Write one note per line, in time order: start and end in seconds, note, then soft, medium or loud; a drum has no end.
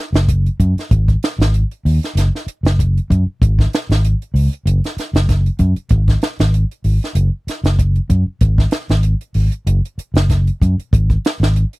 0.13 0.48 F#1 medium
0.13 snare medium
0.13 closed hi-hat soft
0.28 kick medium
0.28 closed hi-hat medium
0.46 closed hi-hat soft
0.60 0.73 F#2 medium
0.60 kick medium
0.60 closed hi-hat medium
0.76 muted fingered electric bass stroke soft
0.76 snare soft
0.76 closed hi-hat soft
0.91 1.15 G#1 medium
0.91 kick medium
0.91 closed hi-hat medium
1.08 kick medium
1.08 closed hi-hat soft
1.23 snare medium
1.23 closed hi-hat medium
1.39 1.63 G#1 medium
1.39 snare medium
1.39 closed hi-hat soft
1.54 closed hi-hat medium
1.71 closed hi-hat soft
1.85 1.98 D#2 medium
1.85 open hi-hat medium
2.03 snare soft
2.03 closed hi-hat soft
2.15 2.29 F#1 loud
2.15 snare soft
2.15 closed hi-hat medium
2.35 snare soft
2.47 muted fingered electric bass stroke soft
2.47 closed hi-hat medium
2.63 2.98 F#1 medium
2.63 snare medium
2.63 closed hi-hat soft
2.79 kick medium
2.79 closed hi-hat medium
2.98 closed hi-hat soft
3.10 3.23 F#2 medium
3.10 kick medium
3.10 closed hi-hat medium
3.26 muted fingered electric bass stroke soft
3.41 3.65 G#1 loud
3.41 kick loud
3.41 closed hi-hat medium
3.59 kick medium
3.59 snare soft
3.73 snare medium
3.73 closed hi-hat medium
3.89 4.13 G#1 medium
3.89 snare medium
3.89 closed hi-hat soft
4.05 closed hi-hat medium
4.22 closed hi-hat soft
4.34 4.47 C#2 medium
4.34 open hi-hat medium
4.53 closed hi-hat soft
4.66 4.79 F#1 loud
4.66 closed hi-hat medium
4.84 snare soft
4.84 closed hi-hat soft
4.97 muted fingered electric bass stroke soft
4.97 snare soft
4.97 closed hi-hat medium
5.13 5.48 F#1 medium
5.13 snare medium
5.13 closed hi-hat soft
5.29 kick medium
5.29 snare soft
5.29 closed hi-hat medium
5.46 closed hi-hat soft
5.59 5.73 F#2 medium
5.59 kick medium
5.59 closed hi-hat medium
5.76 muted fingered electric bass stroke soft
5.76 closed hi-hat soft
5.89 6.15 G#1 loud
5.89 kick medium
5.89 closed hi-hat medium
6.08 kick medium
6.08 snare soft
6.08 closed hi-hat soft
6.22 snare medium
6.22 closed hi-hat soft
6.39 6.63 G#1 medium
6.39 snare medium
6.39 closed hi-hat soft
6.54 closed hi-hat medium
6.71 closed hi-hat soft
6.84 6.98 G#1 medium
6.84 open hi-hat medium
7.03 snare soft
7.03 closed hi-hat soft
7.15 7.28 F#1 loud
7.15 closed hi-hat medium
7.47 muted fingered electric bass stroke soft
7.47 snare soft
7.47 closed hi-hat medium
7.64 7.98 F#1 medium
7.64 snare medium
7.64 closed hi-hat soft
7.79 kick medium
7.79 closed hi-hat medium
7.96 closed hi-hat soft
8.10 8.23 F#2 medium
8.10 kick medium
8.10 closed hi-hat medium
8.26 muted fingered electric bass stroke soft
8.41 8.65 G#1 loud
8.41 kick medium
8.41 closed hi-hat medium
8.58 kick medium
8.58 snare soft
8.71 snare medium
8.71 closed hi-hat medium
8.89 9.13 G#1 medium
8.89 snare medium
8.89 closed hi-hat soft
9.03 closed hi-hat medium
9.21 closed hi-hat soft
9.34 9.48 G#1 medium
9.34 open hi-hat medium
9.52 closed hi-hat soft
9.67 9.79 F#1 loud
9.67 closed hi-hat medium
9.85 closed hi-hat soft
9.98 muted fingered electric bass stroke soft
9.98 closed hi-hat medium
10.14 10.49 F#1 medium
10.14 snare medium
10.14 closed hi-hat soft
10.30 kick medium
10.30 snare soft
10.30 closed hi-hat medium
10.47 closed hi-hat soft
10.62 10.74 F#2 medium
10.62 kick medium
10.62 closed hi-hat medium
10.78 muted fingered electric bass stroke soft
10.78 closed hi-hat soft
10.93 11.16 G#1 loud
10.93 kick medium
10.93 closed hi-hat medium
11.10 kick medium
11.10 closed hi-hat soft
11.25 snare medium
11.25 closed hi-hat medium
11.40 11.64 G#1 medium
11.40 snare medium
11.40 closed hi-hat soft
11.56 closed hi-hat medium
11.73 closed hi-hat soft